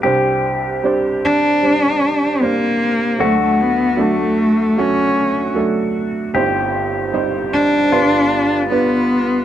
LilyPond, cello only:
\new Staff \with { instrumentName = "Cello" } { \time 4/4 \key c \minor \tempo 4 = 76 r4. d'4. bes4 | a16 a16 b8 a4 des'4 r4 | r4. d'4. b4 | }